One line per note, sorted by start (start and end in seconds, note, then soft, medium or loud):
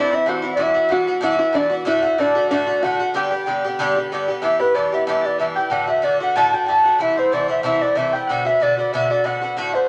0.00 0.12 G2 medium
0.00 0.12 E3 medium
0.00 0.11 C4 medium
0.00 0.11 D4 medium
0.00 0.16 D5 medium
0.00 1.54 D5 medium
0.00 0.25 F#5 medium
0.10 0.26 E3 soft
0.10 0.27 C4 soft
0.10 0.26 E4 soft
0.10 0.26 E4 medium
0.10 0.59 E5 medium
0.15 0.30 E5 medium
0.26 0.44 G2 medium
0.26 0.43 E3 medium
0.26 0.42 C4 medium
0.26 0.41 E4 medium
0.26 0.51 F#4 medium
0.26 0.90 F#5 medium
0.26 0.53 F#5 medium
0.42 0.56 E3 soft
0.42 0.58 C4 soft
0.42 0.58 E4 medium
0.55 0.75 G2 medium
0.55 0.75 E3 medium
0.55 0.74 B3 medium
0.55 0.64 D5 medium
0.59 0.89 E4 medium
0.59 0.73 F#4 medium
0.59 1.22 E5 medium
0.59 0.95 E5 loud
0.74 0.89 E3 soft
0.74 0.90 B3 soft
0.74 0.90 F#4 medium
0.89 1.07 G2 medium
0.89 1.08 E3 medium
0.89 1.07 B3 medium
0.89 1.21 F#4 medium
0.89 1.06 F#4 medium
0.89 1.16 F#5 medium
0.94 1.25 F#5 medium
1.07 1.21 E3 soft
1.07 1.21 B3 medium
1.07 1.22 F#4 medium
1.16 2.77 F#5 soft
1.21 1.39 G2 medium
1.21 1.40 E3 medium
1.21 1.38 B3 medium
1.21 1.38 E4 medium
1.21 1.37 F#4 medium
1.21 1.86 E5 medium
1.21 1.59 E5 medium
1.38 1.53 E3 soft
1.38 1.54 B3 soft
1.38 1.55 E4 medium
1.38 1.54 F#4 soft
1.53 1.71 G2 medium
1.53 1.72 E3 medium
1.53 1.71 B3 medium
1.53 1.71 D4 medium
1.53 1.68 F#4 medium
1.53 2.18 D5 medium
1.57 1.73 D5 medium
1.70 1.85 E3 soft
1.70 1.86 B3 soft
1.70 1.86 F#4 medium
1.85 2.03 A2 medium
1.85 2.03 D3 medium
1.85 2.03 A3 medium
1.85 2.17 E4 medium
1.85 2.01 F#4 medium
1.85 3.58 E5 medium
1.85 2.21 E5 loud
2.02 2.18 D3 soft
2.02 2.19 A3 soft
2.02 2.18 F#4 medium
2.18 2.36 A2 medium
2.18 2.36 D3 medium
2.18 2.35 A3 medium
2.18 2.49 D4 medium
2.18 2.34 F#4 medium
2.18 2.48 D5 medium
2.18 2.51 D5 loud
2.35 2.50 D3 soft
2.35 2.51 A3 soft
2.35 2.50 F#4 medium
2.49 2.68 A2 medium
2.49 2.68 D3 medium
2.49 2.68 A3 medium
2.49 2.82 D4 medium
2.49 2.65 F#4 medium
2.49 4.34 D5 medium
2.49 2.85 D5 medium
2.67 2.83 D3 soft
2.67 2.83 A3 soft
2.67 2.82 F#4 medium
2.81 3.00 A2 medium
2.81 3.01 D3 medium
2.81 3.00 A3 medium
2.81 3.12 F#4 medium
2.81 3.21 F#5 medium
2.81 3.14 F#5 medium
2.86 2.98 F#4 medium
3.00 3.13 D3 soft
3.00 3.15 A3 soft
3.00 3.15 F#4 medium
3.14 3.32 G2 medium
3.14 3.32 D3 medium
3.14 3.31 B3 medium
3.14 4.08 G4 medium
3.14 3.29 G4 medium
3.14 4.07 G5 loud
3.14 4.70 G5 medium
3.31 3.46 D3 soft
3.31 3.47 B3 soft
3.31 3.46 G4 medium
3.46 3.64 G2 medium
3.46 3.64 D3 medium
3.46 3.65 B3 medium
3.46 3.63 G4 medium
3.64 3.78 D3 soft
3.64 3.79 B3 soft
3.64 3.79 G4 medium
3.79 3.96 G2 medium
3.79 3.96 D3 medium
3.79 3.97 B3 medium
3.79 3.95 G4 loud
3.96 4.11 D3 soft
3.96 4.12 B3 soft
3.96 4.11 G4 soft
4.12 4.29 G2 medium
4.12 4.29 D3 medium
4.12 4.29 B3 medium
4.12 4.27 G4 medium
4.28 4.42 D3 soft
4.28 4.42 B3 medium
4.28 4.43 G4 soft
4.42 4.60 G2 medium
4.42 4.60 E3 medium
4.42 4.60 B3 medium
4.42 4.58 G4 medium
4.42 5.07 E5 medium
4.42 4.62 E5 loud
4.59 4.74 E3 soft
4.59 4.75 B3 soft
4.59 4.75 G4 medium
4.59 6.64 B4 medium
4.59 4.77 B4 medium
4.74 4.92 G2 medium
4.74 4.92 E3 medium
4.74 4.93 B3 medium
4.74 5.21 D5 medium
4.74 4.95 D5 medium
4.78 4.91 G4 medium
4.92 5.07 E3 soft
4.92 5.08 B3 medium
4.92 5.07 G4 medium
4.92 5.07 E5 medium
5.07 5.24 G2 medium
5.07 5.25 E3 medium
5.07 5.25 B3 medium
5.07 5.23 G4 medium
5.07 5.38 E5 medium
5.07 5.27 E5 medium
5.21 5.39 G4 soft
5.21 6.03 D5 medium
5.26 5.40 E3 soft
5.26 5.40 B3 soft
5.26 5.39 D5 medium
5.38 5.57 G2 medium
5.38 5.57 E3 medium
5.38 5.57 B3 medium
5.38 5.55 G4 medium
5.38 6.99 E5 medium
5.38 5.46 E5 medium
5.55 5.71 B3 soft
5.55 5.71 G4 soft
5.55 5.78 G5 medium
5.55 5.73 G5 loud
5.60 5.71 E3 soft
5.70 5.88 A2 medium
5.70 5.88 D3 medium
5.70 5.88 A3 medium
5.70 5.86 F#4 medium
5.70 6.23 F#5 medium
5.70 5.89 F#5 loud
5.87 6.02 D3 soft
5.87 6.02 A3 soft
5.87 6.03 F#4 medium
5.87 6.06 E5 medium
6.02 6.20 A2 medium
6.02 6.20 D3 medium
6.02 6.21 A3 medium
6.02 6.19 F#4 medium
6.02 7.30 D5 medium
6.02 6.21 D5 loud
6.20 6.35 D3 soft
6.20 6.35 A3 medium
6.20 6.35 F#4 medium
6.20 6.38 F#5 medium
6.20 6.59 F#5 medium
6.36 6.53 A2 medium
6.36 6.53 D3 medium
6.36 6.53 A3 medium
6.36 6.52 F#4 medium
6.36 6.67 A5 medium
6.36 6.56 A5 loud
6.53 6.67 D3 soft
6.53 6.68 A3 soft
6.53 6.68 F#4 medium
6.53 6.90 G5 medium
6.53 6.69 G5 medium
6.66 6.84 A2 medium
6.66 6.85 D3 medium
6.66 6.85 A3 medium
6.66 6.84 F#4 medium
6.66 6.74 A5 medium
6.70 7.03 A5 loud
6.84 7.00 A3 soft
6.84 7.00 F#4 soft
6.84 8.19 F#5 medium
6.88 6.99 D3 soft
6.98 7.16 C3 medium
6.98 7.17 E3 medium
6.98 7.17 A3 medium
6.98 7.16 E4 medium
6.98 7.49 E5 medium
6.98 7.20 E5 loud
7.16 7.32 E3 soft
7.16 7.33 A3 soft
7.16 7.32 E4 soft
7.16 9.14 C5 medium
7.16 7.35 C5 medium
7.31 7.49 C3 medium
7.31 7.50 E3 medium
7.31 7.48 A3 medium
7.31 7.81 D5 medium
7.31 7.50 D5 medium
7.35 7.47 E4 medium
7.48 7.63 E3 soft
7.48 7.64 A3 soft
7.48 7.63 E4 medium
7.48 7.63 E5 medium
7.48 7.64 E5 medium
7.63 7.81 C3 medium
7.63 7.81 E3 medium
7.63 7.82 A3 medium
7.63 7.81 E4 medium
7.63 7.95 E5 medium
7.63 7.83 E5 medium
7.81 7.96 E3 soft
7.81 7.97 A3 soft
7.81 7.96 E4 soft
7.81 8.62 D5 medium
7.81 7.99 D5 medium
7.95 8.13 C3 medium
7.95 8.14 E3 medium
7.95 8.14 A3 medium
7.95 8.13 E4 medium
7.95 8.46 E5 medium
7.95 8.17 E5 medium
8.13 8.29 A3 soft
8.13 8.29 E4 soft
8.13 8.33 G5 medium
8.13 8.32 G5 loud
8.17 8.29 E3 soft
8.27 8.46 B2 medium
8.27 8.46 D3 medium
8.27 8.45 B3 medium
8.27 9.25 F#5 medium
8.27 8.48 F#5 loud
8.31 8.44 F#4 medium
8.45 8.60 D3 soft
8.45 8.61 B3 soft
8.45 8.60 F#4 soft
8.45 8.92 E5 medium
8.45 8.64 E5 loud
8.60 8.77 B2 medium
8.60 8.78 D3 medium
8.60 8.78 B3 medium
8.60 8.76 F#4 medium
8.60 8.79 D5 loud
8.60 8.79 D5 medium
8.77 8.93 D3 soft
8.77 8.93 B3 soft
8.77 8.92 F#4 soft
8.77 8.92 D5 medium
8.77 9.10 D5 medium
8.92 9.10 B2 medium
8.92 9.10 D3 medium
8.92 9.10 B3 medium
8.92 9.09 F#4 medium
8.92 9.88 E5 medium
8.92 9.13 E5 medium
9.10 9.23 D3 soft
9.10 9.24 B3 soft
9.10 9.25 F#4 soft
9.10 9.88 D5 medium
9.10 9.28 D5 medium
9.24 9.41 B2 medium
9.24 9.42 D3 medium
9.24 9.42 B3 medium
9.24 9.40 F#4 medium
9.24 9.58 F#5 medium
9.24 9.57 F#5 loud
9.41 9.56 D3 soft
9.41 9.57 B3 soft
9.41 9.56 F#4 medium
9.57 9.74 A2 medium
9.57 9.74 D3 medium
9.57 9.74 A3 medium
9.57 9.72 F#4 medium
9.57 9.76 F#5 loud
9.57 9.88 F#5 medium
9.73 9.88 D3 soft
9.73 9.88 A3 soft
9.73 9.88 F#4 soft
9.73 9.88 C5 medium